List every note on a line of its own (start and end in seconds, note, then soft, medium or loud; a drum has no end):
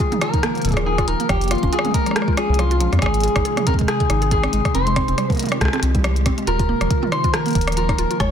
0.00 1.28 D#3 medium
0.00 2.99 F3 medium
0.00 1.28 A#3 medium
0.00 2.98 F4 medium
0.00 0.11 F4 medium
0.00 0.21 G#4 loud
0.00 1.28 A#4 medium
0.12 0.21 D#4 medium
0.12 closed hi-hat soft
0.12 mid tom loud
0.21 0.33 F4 loud
0.21 0.72 A#4 loud
0.21 cross-stick medium
0.21 closed hi-hat medium
0.34 0.42 D#4 medium
0.34 kick loud
0.34 closed hi-hat soft
0.43 0.54 A#3 medium
0.43 cross-stick loud
0.43 closed hi-hat medium
0.55 0.64 F3 medium
0.55 closed hi-hat soft
0.58 closed hi-hat soft
0.62 1.02 D#1 loud
0.62 kick soft
0.62 closed hi-hat soft
0.65 kick medium
0.65 closed hi-hat medium
0.69 kick medium
0.69 closed hi-hat soft
0.72 0.86 G#4 loud
0.72 kick medium
0.72 closed hi-hat soft
0.77 0.86 F4 medium
0.77 cross-stick medium
0.77 closed hi-hat soft
0.86 0.98 D#4 medium
0.86 1.07 G#4 medium
0.98 1.07 F4 loud
0.98 kick loud
0.98 cross-stick medium
0.98 closed hi-hat soft
1.08 1.15 D#1 loud
1.08 1.19 D#4 medium
1.08 1.29 A#4 medium
1.08 closed hi-hat medium
1.20 1.28 A#3 medium
1.20 closed hi-hat soft
1.29 1.56 F1 loud
1.29 1.40 F3 medium
1.29 3.00 G#3 medium
1.29 3.00 C#4 medium
1.29 1.52 G4 loud
1.29 4.71 G#4 medium
1.29 kick loud
1.29 cross-stick medium
1.29 closed hi-hat medium
1.41 closed hi-hat soft
1.44 closed hi-hat soft
1.48 cross-stick medium
1.48 closed hi-hat soft
1.51 1.73 F4 medium
1.51 1.63 F4 medium
1.51 closed hi-hat medium
1.55 closed hi-hat soft
1.58 closed hi-hat soft
1.63 1.69 F1 medium
1.63 1.72 C#4 medium
1.63 kick loud
1.63 closed hi-hat soft
1.73 1.84 F4 loud
1.73 1.94 G#4 loud
1.73 closed hi-hat medium
1.79 cross-stick medium
1.85 1.93 C#4 medium
1.85 closed hi-hat soft
1.85 mid tom medium
1.87 mid tom medium
1.91 2.05 G#3 medium
1.91 2.37 A#4 loud
1.91 kick loud
1.91 closed hi-hat loud
1.91 mid tom medium
2.06 2.15 F3 medium
2.06 cross-stick soft
2.06 closed hi-hat soft
2.11 cross-stick soft
2.16 cross-stick loud
2.16 closed hi-hat medium
2.22 cross-stick soft
2.28 2.36 F4 medium
2.28 kick loud
2.37 2.44 F4 loud
2.37 2.60 G#4 medium
2.37 cross-stick medium
2.37 closed hi-hat medium
2.49 2.82 C2 loud
2.49 2.54 F3 medium
2.54 closed hi-hat soft
2.59 2.65 F3 medium
2.59 2.90 F4 medium
2.59 cross-stick medium
2.59 closed hi-hat medium
2.71 2.76 F4 loud
2.71 closed hi-hat soft
2.80 2.88 A#1 loud
2.80 2.92 F3 loud
2.80 closed hi-hat medium
2.93 2.99 F2 loud
2.93 3.01 F4 medium
2.93 cross-stick soft
2.93 closed hi-hat soft
2.99 cross-stick medium
3.02 3.29 G#1 loud
3.02 6.44 C3 medium
3.02 4.73 D#3 medium
3.02 3.13 G#3 medium
3.02 4.73 G#3 medium
3.02 4.73 D#4 medium
3.02 3.66 G#4 loud
3.02 kick loud
3.02 cross-stick medium
3.02 closed hi-hat medium
3.06 cross-stick medium
3.14 closed hi-hat soft
3.20 closed hi-hat soft
3.24 3.35 G#4 medium
3.24 closed hi-hat loud
3.28 closed hi-hat soft
3.36 3.42 G#1 medium
3.36 3.45 D#4 medium
3.36 kick loud
3.36 cross-stick medium
3.36 closed hi-hat soft
3.45 3.56 G#4 loud
3.45 closed hi-hat medium
3.57 3.62 G#4 medium
3.57 cross-stick medium
3.57 closed hi-hat soft
3.57 mid tom medium
3.67 3.77 C4 medium
3.67 3.73 A#4 loud
3.67 kick loud
3.67 closed hi-hat loud
3.74 kick medium
3.79 3.87 G#3 medium
3.79 kick medium
3.79 closed hi-hat soft
3.88 4.30 G#4 loud
3.88 cross-stick loud
3.88 closed hi-hat medium
4.00 4.09 G#4 medium
4.00 kick loud
4.00 closed hi-hat soft
4.10 4.48 G#1 loud
4.10 4.21 D#4 medium
4.10 cross-stick medium
4.10 closed hi-hat loud
4.22 4.30 G#4 loud
4.22 closed hi-hat soft
4.31 4.38 G#4 medium
4.31 4.74 G#4 loud
4.31 kick loud
4.31 closed hi-hat medium
4.43 4.52 C4 medium
4.43 cross-stick medium
4.43 closed hi-hat soft
4.53 4.61 G#1 loud
4.53 4.64 G#3 medium
4.53 closed hi-hat medium
4.65 kick loud
4.65 cross-stick medium
4.65 closed hi-hat soft
4.75 5.01 F1 loud
4.75 6.46 G3 medium
4.75 6.46 G#3 medium
4.75 4.86 C4 medium
4.75 8.31 F4 medium
4.75 6.46 G4 medium
4.75 5.34 C5 loud
4.75 closed hi-hat medium
4.87 4.96 G#3 medium
4.87 closed hi-hat soft
4.96 5.07 C4 loud
4.96 kick loud
4.96 cross-stick medium
4.96 closed hi-hat loud
5.08 5.14 F1 medium
5.08 5.13 C4 medium
5.08 closed hi-hat soft
5.18 5.29 G3 medium
5.18 cross-stick medium
5.18 closed hi-hat medium
5.30 5.38 F3 medium
5.30 kick loud
5.30 closed hi-hat soft
5.30 mid tom soft
5.32 5.57 A#4 loud
5.32 closed hi-hat soft
5.32 mid tom soft
5.35 closed hi-hat soft
5.35 mid tom medium
5.37 closed hi-hat soft
5.39 closed hi-hat loud
5.39 mid tom medium
5.43 closed hi-hat soft
5.43 mid tom medium
5.46 closed hi-hat soft
5.46 mid tom medium
5.49 5.61 C4 medium
5.49 cross-stick medium
5.49 closed hi-hat soft
5.61 5.69 C2 medium
5.61 5.73 G#3 medium
5.61 kick loud
5.61 cross-stick loud
5.61 closed hi-hat medium
5.65 cross-stick loud
5.68 cross-stick medium
5.73 5.81 C4 loud
5.73 cross-stick medium
5.73 closed hi-hat soft
5.76 cross-stick medium
5.80 6.31 C2 medium
5.80 5.89 C4 medium
5.80 cross-stick soft
5.80 closed hi-hat loud
5.95 6.03 G3 medium
5.95 kick loud
5.95 closed hi-hat soft
6.04 6.15 F3 medium
6.04 cross-stick medium
6.04 closed hi-hat medium
6.16 closed hi-hat soft
6.26 6.37 C4 medium
6.26 kick loud
6.26 cross-stick medium
6.26 closed hi-hat loud
6.38 6.47 G#3 medium
6.38 closed hi-hat soft
6.47 6.74 D#1 loud
6.47 8.18 D#3 medium
6.47 8.18 F3 medium
6.47 8.18 A#3 medium
6.47 6.58 F4 loud
6.47 8.18 A#4 medium
6.47 7.08 A#4 loud
6.47 closed hi-hat medium
6.59 6.64 F4 medium
6.59 kick loud
6.59 closed hi-hat soft
6.69 6.80 A#3 medium
6.81 6.87 D#1 medium
6.81 6.89 F3 medium
6.81 cross-stick medium
6.81 closed hi-hat soft
6.91 kick loud
6.91 closed hi-hat medium
7.03 7.12 F4 medium
7.03 mid tom medium
7.12 7.24 D#4 medium
7.12 7.33 C5 loud
7.12 cross-stick medium
7.12 closed hi-hat soft
7.24 7.33 F4 loud
7.24 kick loud
7.24 closed hi-hat soft
7.34 7.40 F4 medium
7.34 7.76 A#4 loud
7.34 cross-stick loud
7.34 closed hi-hat medium
7.46 7.54 A#3 medium
7.46 closed hi-hat soft
7.48 closed hi-hat soft
7.51 closed hi-hat soft
7.53 7.93 D#1 loud
7.53 kick loud
7.53 closed hi-hat soft
7.55 7.66 F3 medium
7.55 closed hi-hat medium
7.58 closed hi-hat soft
7.61 closed hi-hat medium
7.64 cross-stick medium
7.64 closed hi-hat soft
7.67 closed hi-hat medium
7.72 closed hi-hat medium
7.77 7.88 F4 medium
7.77 8.20 A#4 medium
7.77 closed hi-hat medium
7.89 7.98 D#4 medium
7.89 kick loud
7.89 cross-stick medium
7.89 closed hi-hat soft
7.98 8.06 D#1 loud
7.98 8.09 F4 loud
7.98 closed hi-hat medium
8.11 8.16 F4 medium
8.11 closed hi-hat soft
8.20 8.31 F1 loud
8.20 8.31 F3 medium
8.20 8.31 G#3 medium
8.20 8.31 C#4 medium
8.20 8.31 G#4 medium
8.20 8.31 C#5 loud
8.20 kick loud
8.20 cross-stick medium
8.20 closed hi-hat medium